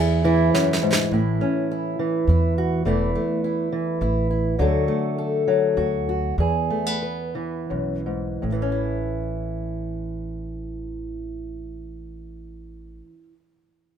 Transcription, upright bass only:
0.00 0.50 E2 loud
1.12 1.39 A1 medium
2.27 2.82 E2 medium
2.85 3.13 E1 medium
4.01 4.56 A1 medium
4.59 4.87 D2 medium
5.77 6.35 D2 medium
6.38 6.68 E2 medium
7.71 8.40 B1 medium
8.43 13.00 A1 medium

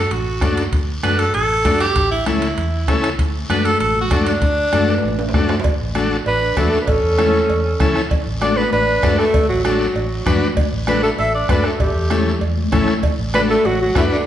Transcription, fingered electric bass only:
0.11 0.42 A1 medium
0.42 0.66 F#2 medium
0.73 0.97 D2 medium
1.04 1.28 F#2 medium
1.34 1.65 A1 medium
1.65 1.90 F#2 medium
1.96 2.20 A1 medium
2.27 2.51 C#2 medium
2.57 2.88 E2 medium
2.88 3.13 C#2 medium
3.19 3.43 D2 medium
3.50 3.74 F#2 medium
3.81 4.11 A1 medium
4.11 4.36 F#2 medium
4.42 4.66 D2 medium
4.73 4.97 F#2 medium
5.04 5.34 A1 medium
5.34 5.59 F#2 loud
5.65 5.77 D2 medium
5.80 6.17 A1 medium
6.26 6.51 A1 medium
6.57 6.69 E2 loud
6.88 7.00 A1 loud
7.03 7.40 E2 medium
7.49 7.74 E2 loud
7.80 7.92 C#2 loud
8.11 8.23 D2 medium
8.26 8.63 A1 medium
8.72 8.97 A1 medium
9.03 9.16 F#2 loud
9.34 9.46 D2 medium
9.49 9.86 A1 medium
9.95 10.20 A1 medium
10.26 10.39 F#2 loud
10.57 10.69 D2 medium
10.73 11.09 A1 medium
11.18 11.43 A1 medium
11.49 11.62 F#2 loud
11.80 11.92 A1 loud
11.95 12.32 E2 medium
12.41 12.66 E2 medium
12.72 12.85 A1 loud
13.03 13.15 D2 medium
13.18 13.55 A1 medium
13.65 13.90 A1 medium
13.96 14.08 F#2 loud

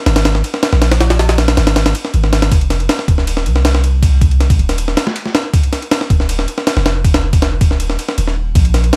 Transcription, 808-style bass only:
0.06 0.43 G#1 medium
0.73 1.56 A#1 medium
1.57 1.94 G#1 medium
2.14 2.50 G#1 medium
2.52 2.88 F1 loud
3.08 3.48 D#1 medium
3.46 4.58 C2 medium
4.59 4.95 D#1 medium
6.10 6.46 D#1 medium
6.77 7.60 F1 medium
7.61 7.97 D#1 medium
8.18 8.54 D#1 medium
8.55 8.92 A#1 loud

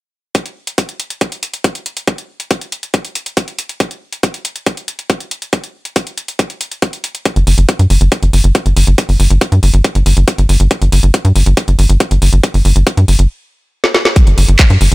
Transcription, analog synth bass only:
7.36 7.44 G1 medium
7.47 7.55 G1 loud
7.58 7.66 G1 medium
7.79 7.87 G2 medium
7.90 7.98 G1 loud
8.01 8.09 G1 medium
8.23 8.30 G1 medium
8.33 8.41 G1 loud
8.44 8.52 G1 medium
8.66 8.73 G1 medium
8.77 8.84 G1 loud
8.87 8.95 G1 medium
9.09 9.17 G1 medium
9.20 9.27 G1 loud
9.30 9.38 G1 medium
9.52 9.60 G2 medium
9.63 9.71 G1 loud
9.74 9.81 G1 medium
9.95 10.03 G1 medium
10.06 10.14 G1 loud
10.17 10.25 G1 medium
10.38 10.46 G1 medium
10.49 10.57 G1 loud
10.60 10.68 G1 medium
10.82 10.89 G1 medium
10.92 11.00 G1 loud
11.03 11.11 G1 medium
11.25 11.32 G2 medium
11.36 11.43 G1 loud
11.46 11.54 G1 medium
11.68 11.76 G1 medium
11.79 11.86 G1 loud
11.89 11.97 G1 medium
12.11 12.19 G1 medium
12.22 12.30 G1 loud
12.33 12.40 G1 medium
12.54 12.62 G1 medium
12.65 12.73 G1 loud
12.76 12.84 G1 medium
12.97 13.05 G2 medium
13.08 13.16 G1 loud
13.19 13.27 G1 medium
14.27 14.35 G1 medium
14.38 14.45 G1 loud
14.48 14.56 G1 medium
14.70 14.78 G2 medium
14.81 14.89 G1 loud
14.92 14.95 G1 medium

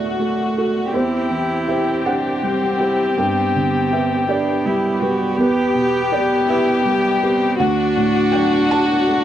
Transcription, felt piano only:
0.00 0.89 D2 soft
0.00 0.96 A2 soft
0.00 0.58 F#4 soft
0.00 0.58 A4 soft
0.00 0.89 D5 medium
0.00 0.96 E5 medium
0.00 0.96 F#5 medium
0.20 0.79 A3 soft
0.58 0.91 F#4 soft
0.58 0.90 A4 soft
0.94 3.13 E2 soft
0.94 1.64 C5 medium
1.31 1.90 E3 soft
1.68 2.02 G4 soft
1.68 2.02 C5 soft
1.68 2.03 E5 medium
2.06 2.39 G4 soft
2.06 2.39 C5 soft
2.06 3.14 F#5 medium
2.43 3.03 G3 soft
2.80 3.14 G4 soft
2.80 3.14 C5 soft
3.18 5.35 G2 medium
3.18 3.88 G5 medium
3.56 4.15 D3 soft
3.92 4.25 G4 soft
3.92 4.26 B4 medium
3.92 4.27 E5 medium
4.28 4.62 G4 soft
4.28 4.62 B4 soft
4.28 5.35 D5 medium
4.66 5.00 G3 medium
5.02 5.35 G3 medium
5.02 5.35 B4 medium
5.38 7.56 E2 medium
5.38 6.09 B4 medium
5.75 6.34 B2 soft
6.12 6.45 G4 soft
6.12 6.45 B4 medium
6.12 6.47 D5 medium
6.48 6.82 G4 soft
6.48 6.82 B4 medium
6.48 7.57 E5 medium
6.85 7.45 G3 soft
7.23 7.56 G4 medium
7.23 7.56 B4 medium
7.59 9.24 D2 medium
7.59 8.30 F#5 loud
7.97 8.56 A2 soft
8.32 8.67 F#3 medium
8.32 8.67 D5 medium
8.32 8.67 G5 loud
8.71 9.05 F#4 medium
8.71 9.05 D5 medium
8.71 9.24 A5 loud
9.09 9.24 A3 soft

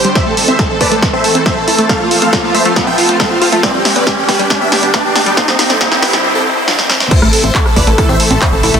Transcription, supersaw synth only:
0.05 0.13 C5 medium
0.16 0.24 C5 medium
0.16 0.24 E5 loud
0.27 0.35 A4 medium
0.37 0.45 A4 medium
0.48 0.56 C5 medium
0.48 0.56 E5 medium
0.59 0.67 A4 medium
0.70 0.78 A4 medium
0.81 0.89 B4 medium
0.81 0.89 D5 medium
0.92 1.00 A4 medium
1.02 1.10 A4 medium
1.13 1.21 C5 medium
1.13 1.21 E5 medium
1.24 1.32 A4 medium
1.35 1.43 A4 medium
1.46 1.54 C5 medium
1.46 1.54 E5 medium
1.57 1.65 A4 medium
1.68 1.76 A4 medium
1.78 1.87 A4 medium
1.89 1.97 A4 medium
1.89 1.97 F5 loud
2.00 2.08 F4 medium
2.11 2.19 F4 medium
2.22 2.30 A4 medium
2.22 2.30 F5 loud
2.33 2.41 F4 medium
2.44 2.52 F4 medium
2.54 2.63 C5 medium
2.54 2.63 E5 loud
2.65 2.73 F4 medium
2.76 2.84 F4 medium
2.87 2.95 E5 medium
2.87 2.95 G5 medium
2.98 3.06 F4 medium
3.09 3.17 F4 medium
3.20 3.28 A4 medium
3.20 3.28 F5 medium
3.31 3.39 F4 medium
3.41 3.50 F4 medium
3.53 3.61 F4 medium
3.63 3.71 B4 medium
3.63 3.71 D5 loud
3.74 3.82 G4 medium
3.85 3.93 G4 medium
3.96 4.04 B4 medium
3.96 4.04 D5 medium
4.07 4.15 G4 medium
4.18 4.26 G4 medium
4.28 4.37 G4 medium
4.28 4.37 B4 loud
4.39 4.47 G4 medium
4.50 4.58 G4 medium
4.61 4.69 G4 medium
4.61 4.69 E5 medium
4.72 4.80 G4 medium
4.83 4.91 G4 medium
4.94 5.02 B4 medium
4.94 5.02 D5 medium
5.05 5.13 G4 medium
5.15 5.24 G4 medium
5.26 5.34 G4 medium
5.37 5.45 A4 medium
5.37 5.45 C5 loud
5.48 5.56 C4 medium
5.59 5.67 C4 medium
5.70 5.78 A4 medium
5.70 5.78 C5 loud
5.81 5.89 C4 medium
5.92 6.00 C4 medium
6.02 6.10 G4 medium
6.02 6.10 B4 medium
6.13 6.21 C4 medium
6.24 6.32 C4 medium
6.35 6.43 C4 medium
6.35 6.43 A4 loud
6.46 6.54 C4 medium
6.57 6.65 C4 medium
6.68 6.76 D4 medium
6.68 6.76 F4 medium
6.79 6.87 C4 medium
6.90 6.98 C4 medium
7.01 7.08 C4 medium
7.11 7.19 C5 medium
7.11 7.19 E5 loud
7.22 7.30 A4 medium
7.33 7.41 A4 medium
7.44 7.52 C5 medium
7.44 7.52 E5 loud
7.55 7.63 A4 medium
7.66 7.74 A4 medium
7.77 7.85 B4 medium
7.77 7.85 D5 medium
7.88 7.95 A4 medium
7.98 8.06 A4 medium
8.09 8.17 C5 medium
8.09 8.17 E5 loud
8.20 8.28 A4 medium
8.31 8.39 A4 medium
8.42 8.50 C5 medium
8.42 8.50 E5 medium
8.53 8.61 A4 medium
8.63 8.71 A4 medium
8.74 8.80 A4 medium

